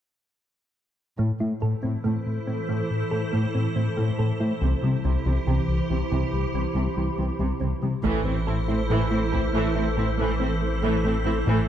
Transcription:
1.18 1.32 A2 medium
1.18 1.27 A2 soft
1.18 4.58 E3 soft
1.18 1.32 A3 medium
1.18 4.58 E4 soft
1.18 4.57 A4 soft
1.18 4.58 C5 soft
1.40 1.49 A2 soft
1.40 1.53 A3 soft
1.40 1.53 E4 soft
1.62 1.70 A2 soft
1.62 1.75 A2 soft
1.62 1.75 A4 soft
1.83 1.91 A2 soft
1.83 1.96 A2 soft
1.83 1.96 C4 soft
2.04 2.13 A2 soft
2.04 2.18 A2 medium
2.04 2.17 A3 medium
2.26 2.39 A2 soft
2.47 2.60 A2 soft
2.47 2.56 A2 soft
2.47 2.60 C4 soft
2.69 2.77 A2 soft
2.69 2.82 A2 medium
2.69 2.82 A3 medium
2.91 3.03 A2 soft
3.11 3.19 A2 soft
3.11 3.25 A2 soft
3.11 3.24 A4 soft
3.33 3.41 A2 soft
3.33 3.46 A2 medium
3.33 3.46 A3 medium
3.55 3.63 A2 soft
3.55 3.68 A2 soft
3.55 3.68 C4 soft
3.76 3.89 A2 soft
3.76 3.84 A2 soft
3.76 3.89 C4 soft
3.97 4.05 A2 soft
3.97 4.11 A2 medium
3.97 4.10 A3 medium
4.19 4.27 A2 soft
4.19 4.32 A2 soft
4.19 4.32 A4 soft
4.40 4.48 A2 soft
4.40 4.53 A3 soft
4.40 4.53 E4 soft
4.61 4.74 C2 medium
4.61 4.70 C3 soft
4.61 4.75 C3 medium
4.61 8.01 E3 medium
4.61 8.01 E4 medium
4.61 8.05 G4 medium
4.61 8.01 C5 medium
4.83 4.96 C3 soft
4.83 4.91 C3 soft
4.83 4.96 G3 soft
5.04 5.17 C2 medium
5.04 5.13 C3 soft
5.04 5.18 C4 soft
5.26 5.39 C2 soft
5.26 5.34 C3 soft
5.26 5.39 E3 soft
5.47 5.60 C2 medium
5.47 5.60 C3 medium
5.47 5.56 C3 medium
5.68 5.81 C2 soft
5.90 6.03 C2 soft
5.90 5.99 C3 soft
5.90 6.03 E3 soft
6.11 6.24 C2 medium
6.11 6.20 C3 soft
6.11 6.25 C3 medium
6.33 6.46 C2 medium
6.54 6.67 C2 soft
6.54 6.63 C3 soft
6.54 6.68 C4 soft
6.75 6.88 C2 medium
6.75 6.84 C3 soft
6.75 6.89 C3 medium
6.97 7.10 C2 soft
6.97 7.05 C3 soft
6.97 7.10 E3 soft
7.18 7.31 C2 medium
7.18 7.27 C3 soft
7.18 7.32 E3 soft
7.39 7.52 C2 medium
7.39 7.48 C3 soft
7.39 7.53 C3 medium
7.61 7.74 C2 soft
7.61 7.69 C3 soft
7.61 7.74 C4 soft
7.82 7.95 C3 soft
7.82 7.90 C3 soft
7.82 7.96 G3 soft
8.03 11.43 A1 medium
8.03 8.25 A1 medium
8.03 8.24 A2 medium
8.03 8.17 A2 medium
8.03 11.43 E3 medium
8.03 8.25 E3 medium
8.03 8.17 A3 medium
8.03 8.25 A3 medium
8.03 11.43 E4 medium
8.03 11.43 A4 medium
8.03 11.43 C5 medium
8.03 taiko soft
8.25 8.33 A2 soft
8.25 8.39 A2 soft
8.25 8.34 A3 soft
8.25 8.38 C4 soft
8.25 8.34 C4 soft
8.47 8.55 A2 soft
8.47 8.60 A2 soft
8.47 8.55 C4 soft
8.47 8.55 E4 soft
8.47 8.60 A4 medium
8.68 8.77 A2 soft
8.68 8.82 A3 soft
8.68 8.77 A3 soft
8.68 8.77 C4 soft
8.68 8.81 E4 soft
8.90 9.03 A2 medium
8.90 8.98 A2 soft
8.90 9.10 E3 soft
8.90 9.03 A3 medium
8.90 9.10 A3 soft
9.11 9.20 A2 soft
9.11 9.19 A3 soft
9.11 9.24 A3 soft
9.11 9.19 C4 soft
9.11 9.24 E4 soft
9.32 9.41 A2 soft
9.32 9.46 A2 soft
9.32 9.41 C4 soft
9.32 9.41 E4 soft
9.32 9.45 A4 soft
9.32 taiko soft
9.53 9.67 A2 medium
9.53 9.63 A2 soft
9.53 9.74 E3 soft
9.53 9.67 A3 medium
9.53 9.75 A3 soft
9.75 9.84 A2 soft
9.75 9.89 A3 soft
9.75 9.84 A3 soft
9.75 9.84 C4 soft
9.75 9.88 E4 soft
9.97 10.05 A2 soft
9.97 10.10 A2 soft
9.97 10.06 C4 soft
9.97 10.06 E4 soft
9.97 10.10 A4 soft
10.18 10.26 A2 soft
10.18 10.32 A2 medium
10.18 10.39 E3 soft
10.18 10.31 A3 medium
10.18 10.39 A3 soft
10.40 10.48 A2 soft
10.40 10.53 A2 soft
10.40 10.49 A3 soft
10.40 10.53 C4 soft
10.40 10.49 C4 soft
10.62 10.75 A3 medium
10.82 10.90 A2 soft
10.82 10.96 A2 medium
10.82 11.03 E3 soft
10.82 10.96 A3 medium
10.82 11.03 A3 soft
11.04 11.12 A2 soft
11.04 11.18 A2 soft
11.04 11.13 A3 soft
11.04 11.13 C4 soft
11.04 11.18 A4 soft
11.25 11.33 A2 soft
11.25 11.39 A3 soft
11.25 11.34 C4 soft
11.25 11.34 E4 soft
11.25 11.39 E4 soft
11.46 11.68 A1 medium
11.46 11.67 A1 soft
11.46 11.54 A2 soft
11.46 11.60 A2 medium
11.46 11.68 E3 soft
11.46 11.68 A3 soft
11.46 11.61 A3 medium

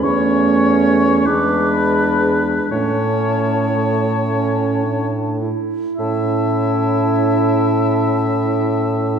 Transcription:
0.03 1.22 E2 soft
0.03 1.28 A3 medium
0.03 1.29 C#4 medium
0.03 1.28 C#5 soft
0.03 1.28 C#6 medium
1.26 2.54 E2 soft
1.26 2.71 G#3 soft
1.26 2.71 D4 soft
1.26 2.71 B4 soft
1.26 1.72 D6 soft
1.72 2.34 B5 medium
2.71 5.50 A2 soft
2.71 5.50 A3 soft
2.71 4.17 C#4 soft
2.71 5.08 C#5 soft
2.71 5.38 A5 medium
4.32 4.84 C#4 soft
4.83 5.43 D4 soft
5.41 5.99 E4 soft
5.97 9.19 A2 soft
5.97 9.19 C#4 soft
5.97 9.19 E4 soft
5.97 9.19 E5 soft
5.97 9.19 A5 medium

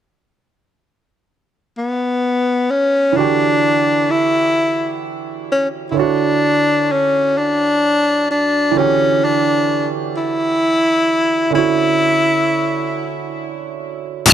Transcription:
1.78 2.72 B3 medium
2.70 3.19 C#4 medium
3.12 5.90 D3 soft
3.12 5.89 E3 medium
3.17 4.12 D4 medium
3.17 5.92 F#4 medium
3.17 5.93 G4 medium
4.11 5.03 E4 medium
5.52 5.68 C#4 medium
5.91 8.68 D3 medium
5.91 6.00 E4 medium
5.91 8.70 C#5 soft
5.97 6.93 D4 medium
5.97 8.71 E4 soft
5.97 8.72 F#4 medium
6.92 7.39 C#4 medium
7.38 8.29 D4 medium
8.31 8.79 D4 medium
8.71 11.49 D3 medium
8.71 11.48 E3 medium
8.77 9.26 C#4 loud
8.77 11.51 F#4 medium
8.77 11.52 G4 medium
9.24 9.88 D4 medium
10.17 11.51 E4 medium
11.50 14.27 D3 medium
11.50 14.28 C#4 medium
11.55 13.36 E4 loud
11.55 14.29 E4 medium
11.55 14.31 F#4 medium
14.30 14.34 E3 medium

